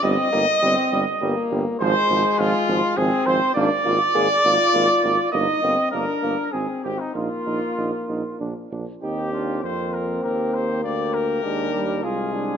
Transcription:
X:1
M:3/4
L:1/16
Q:1/4=101
K:Eb
V:1 name="Trumpet"
e8- e2 z2 | c4 F4 A2 c2 | d12 | e4 B4 A2 G E |
F8 z4 | G4 c2 B2 B2 c2 | d2 B6 A4 |]
V:2 name="Flugelhorn"
e8- e2 z2 | c4 F4 A2 c2 | d12 | e4 B4 A2 G E |
F8 z4 | G2 F2 F4 G4 | G8 F4 |]
V:3 name="French horn"
C2 B,2 C2 z2 B,4 | A,8 C4 | D2 F2 A2 F6 | E2 C2 D4 C4 |
B,8- B,2 z2 | C4 B,8- | B,4 A,2 G,2 A,4 |]
V:4 name="Trombone"
G,2 G,2 G,2 G,2 G,2 G,2 | F,2 F,2 F,2 F,2 F,2 F,2 | B,2 B,2 B,2 B,2 B,2 B,2 | B,2 B,2 B,2 B,2 C2 C2 |
E2 E2 E2 E2 D2 D2 | E2 D2 C8 | B,4 D4 F2 D2 |]
V:5 name="Tuba" clef=bass
G,,,2 G,,,2 G,,,2 G,,,2 G,,,2 G,,,2 | A,,,2 A,,,2 A,,,2 A,,,2 A,,,2 A,,,2 | A,,,2 A,,,2 A,,,2 A,,,2 A,,,2 A,,,2 | G,,,2 G,,,2 G,,,2 G,,,2 A,,,2 A,,,2 |
B,,,2 B,,,2 B,,,2 B,,,2 B,,,2 B,,,2 | E,,4 F,,4 E,,4 | D,,4 E,,4 C,,4 |]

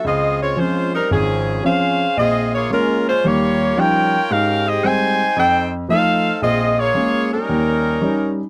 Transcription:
X:1
M:4/4
L:1/8
Q:"Swing" 1/4=113
K:Dblyd
V:1 name="Saxophone section"
[CFAe] [A,CFd] [A,DFc] [G,CEB] [F,CDA]2 [DAcf]2 | [CFAe] [B,FAd] [A,DFB] [A,DFc] [B,FGd]2 [FBdg]2 | [DGBf] [CGAe] [Ecga]2 [E=Acg] z [EAcf]2 | [CFAe] [B,FAd]2 [G,DEB]4 z |]
V:2 name="Grand piano" clef=bass
D,,2 [F,CD] z A,,,2 [F,CD] z | B,,,2 [A,B,D] z [E,,G,]2 [F,G,DE] z | A,,2 [G,A,C] z F,,2 [F,=A,E] z | B,,,2 [A,B,D] z E,,2 [G,DE] z |]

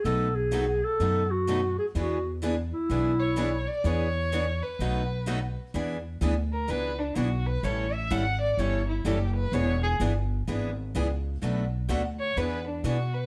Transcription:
X:1
M:4/4
L:1/8
Q:"Swing" 1/4=127
K:Emix
V:1 name="Violin"
z8 | z4 z c2 d | c3 B4 z | z3 ^A B D F B |
c e f d c E =G B | c G z6 | z3 c B D F B |]
V:2 name="Clarinet"
A G2 A2 F2 G | F2 z E4 z | z8 | z8 |
z8 | z8 | z8 |]
V:3 name="Steel-string acoustic guitar"
[B,,F,A,^DFB] z [B,,F,A,DFB] z [B,,F,A,DFB] z [B,,F,A,DFB] z | [E,B,DGB] z [E,B,DGB] z [E,B,DGB] z [E,B,DGB] z | [E,B,DGB] z [E,B,DGB] z [B,,F,A,^DFB] z [B,,F,A,DFB] z | [E,B,DGB] z [E,B,DGB] z [E,B,DGB] z [E,B,DGB] z |
[E,=G,CEA] z [E,G,CEA] z [E,G,CEA] z [E,G,CEA] z | [E,B,DGB] z [E,B,DGB] z [E,B,DGB] z [E,B,DGB] z | [B,,F,A,DFB] z [B,,F,A,DFB] z [E,B,DGB] z [E,B,DGB] z |]
V:4 name="Steel-string acoustic guitar"
[B,,F,A,^DF] z [B,,F,A,DF] z [B,,F,A,DF] z [B,,F,A,DF] z | [E,B,DG] z [E,B,DG] z [E,B,DG] z [E,B,DG] z | [E,B,DG] z [E,B,DG] z [B,,F,A,^DF] z [B,,F,A,DF] z | [E,B,DG] z [E,B,DG] z [E,B,DG] z [E,B,DG] z |
[E,=G,CEA] z [E,G,CEA] z [E,G,CEA] z [E,G,CEA] z | [E,B,DG] z [E,B,DG] z [E,B,DG] z [E,B,DG] z | [B,,F,A,DF] z [B,,F,A,DF] z [E,B,DG] z [E,B,DG] z |]
V:5 name="Upright bass" clef=bass
B,,,4 F,,4 | E,,4 B,,,4 | E,,4 B,,,4 | E,,2 D,,2 C,,2 B,,,2 |
A,,,2 G,,,2 =G,,,2 F,,,2 | E,,,2 =G,,,2 ^G,,,2 C,,2 | B,,,2 D,,2 E,,2 B,,2 |]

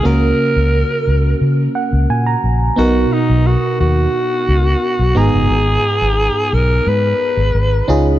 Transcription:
X:1
M:4/4
L:1/16
Q:1/4=88
K:G#dor
V:1 name="Alto saxophone"
A8 z8 | F2 D2 F2 F8 G2- | G6 A2 B6 z2 |]
V:2 name="FM electric piano"
[A,CFA]16 | [B,DFA]12- [B,DFA]2 [B,DGa]2- | [B,DGa]12- [B,DGa]2 [CDEG]2 |]
V:3 name="FM electric piano" clef=bass
C,6 z4 f2 g a3 | B,,6 z8 G,,2- | G,,4 z8 z2 C,2 |]
V:4 name="Fingered electric bass" clef=bass
C,,2 z C,,2 z C,,2 C,2 z C,, A,,2 A,,,2 | B,,,2 z B,,,2 z D,,2 z2 C,,2 z B,,, G,,, F,,, | G,,,2 z G,,,2 z B,,,2 G,,2 z G,,, G,,,2 C,,2 |]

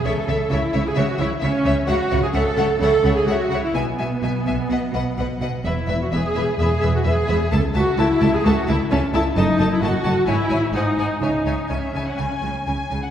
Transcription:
X:1
M:4/4
L:1/16
Q:1/4=129
K:Alyd
V:1 name="Violin section"
e2 e2 e2 e2 e2 e2 e2 e2 | f2 f2 f2 f2 f2 f2 f2 f2 | g2 g2 g2 g2 f2 f2 f2 f2 | e2 e2 e2 e2 e2 e2 e2 e2 |
a2 a2 a2 a2 a2 a2 a2 a2 | [K:C#m] a2 a2 a2 a2 g2 g2 g2 g2 | g2 g2 g2 g2 g2 g2 g2 g2 |]
V:2 name="Violin section"
[ce]2 [ce]2 [ce]2 [ce]2 [ce]2 [ce]2 [ce]2 [ce]2 | [ce]2 [ce]2 [ce]2 [ce]2 [ce]2 [ce]2 [ce]2 [ce]2 | e2 e2 e2 e2 [Bd]2 [Bd]2 [Bd]2 [Bd]2 | [Be]2 [Be]2 [Be]2 [Be]2 [Be]2 [Be]2 [Be]2 [Be]2 |
[Ae]2 [Ae]2 [Ae]2 [Ae]2 [Ae]2 [Ae]2 [Ae]2 [Ae]2 | [K:C#m] [Ad]2 [Ad]2 [Ad]2 [Ad]2 [ce]2 [ce]2 [^Bf]2 [Bf]2 | [ce]2 [ce]2 e3 f g4 g3 f |]
V:3 name="Viola section"
A4 E3 G F2 E2 C4 | F3 G A4 A3 G F3 E | B,12- B,2 z2 | E3 F G4 G3 F G4 |
A2 F2 E3 G F2 E2 C2 E2 | [K:C#m] D3 E F4 E4 D4 | D4 C8 z4 |]
V:4 name="Cello section" clef=bass
C,2 C,2 C,2 C,2 C,2 C,2 C,2 C,2 | C,2 C,2 C,2 C,2 C,2 C,2 C,2 C,2 | B,,2 B,,2 B,,2 B,,2 B,,2 B,,2 B,,2 B,,2 | E,,2 E,,2 E,,2 E,,2 E,,2 E,,2 E,,2 E,,2 |
C,,2 C,,2 C,,2 C,,2 C,,2 C,,2 C,,2 C,,2 | [K:C#m] F,,2 F,,2 F,,2 F,,2 G,,2 G,,2 G,,2 G,,2 | C,2 C,2 C,2 C,2 C,2 C,2 C,2 C,2 |]
V:5 name="Double bass section" clef=bass
C,,2 C,,2 C,,2 C,,2 C,,2 C,,2 C,,2 C,,2 | C,,2 C,,2 C,,2 C,,2 C,,2 C,,2 C,,2 C,,2 | B,,,2 B,,,2 B,,,2 B,,,2 B,,,2 B,,,2 B,,,2 B,,,2 | E,,,2 E,,,2 E,,,2 E,,,2 E,,,2 E,,,2 E,,,2 E,,,2 |
C,,2 C,,2 C,,2 C,,2 C,,2 C,,2 C,,2 C,,2 | [K:C#m] F,,,2 F,,,2 F,,,2 F,,,2 G,,,2 G,,,2 G,,,2 G,,,2 | C,,2 C,,2 C,,2 C,,2 C,,2 C,,2 C,,2 C,,2 |]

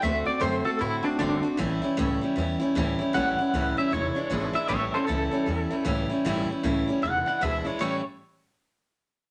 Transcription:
X:1
M:4/4
L:1/8
Q:"Swing" 1/4=154
K:Amix
V:1 name="Clean electric guitar"
e d =c A E D D2 | z8 | f3 e c3 e | [ce] [A=c] A4 z2 |
z4 f f e c | c z6 z |]
V:2 name="Steel-string acoustic guitar"
[D,A,=CF] [A,CF] [D,A,CF] [A,CF] [D,A,CF] [A,CF] [D,A,CF] [A,CF] | [A,,E,G,CE] [G,CE] [A,,E,G,CE] [G,CE] [E,G,CE] [G,CE] [A,,E,G,CE] [G,CE] | [A,,E,G,CE] [G,CE] [A,,E,G,CE] [G,CE] [E,^G,DE] [E,G,DE] [E,,B,,E,G,DE] [E,G,DE] | [A,,E,G,CE] [G,CE] [A,,E,G,CE] [G,CE] [E,G,CE] [G,CE] [A,,E,G,CE] [G,CE] |
[A,,E,G,CE] [G,CE] [A,,E,G,CE] [G,CE] [E,^G,DE] [E,G,DE] [E,,B,,E,G,DE] [E,G,DE] | [A,,E,G,CE] z6 z |]
V:3 name="Upright bass" clef=bass
D,, z F,, z A,, z G,,, z | A,,, z C,, z E,, z D,, z | A,,, z C,, z E,,, z ^G,,, z | A,,, z C,, z E,, z C,, z |
G,,, z C,, z E,,, z D,, z | A,,, z6 z |]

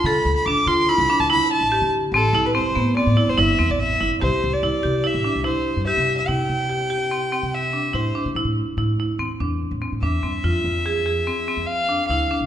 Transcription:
X:1
M:5/4
L:1/16
Q:1/4=144
K:C
V:1 name="Violin"
b3 b d'2 c'2 b3 a b2 a4 z2 | A3 B c4 d3 c e3 d e3 z | c3 d4- d e4 c4 e3 e | g12 e4 c3 z |
z16 e4- | e12 f4 f3 z |]
V:2 name="Marimba"
A4 D2 F2 E2 D2 E4 G4 | C2 E2 C2 B,2 C2 E2 E2 C4 E2 | G4 E2 G2 E2 D2 E4 G4 | E4 G2 G2 C2 C4 D2 E2 D2 |
E4 E2 E2 C2 D4 C2 D2 C2 | F4 _A2 A2 C2 C4 D2 E2 D2 |]
V:3 name="Upright bass" clef=bass
D, z D,, z D,, z D,2 z C,, z D,,2 z2 A,,,2 D,3 | A,,,2 C,,2 G,,,2 A,,3 A,, z G,,, G,,,2 E,, A,,,3 G,,, z | C,, z C,, z C,, z C,2 z A,,, z C,,2 z2 G,,2 C,3 | C,2 C,8 z C,4- C, A,,2 z B,, |
A,, A,,2 z A,,4 E,, z E,,3 A,, z A,, E,,2 G,,2 | F,,2 F,,8 z F,,4- F,, D,,2 z C,, |]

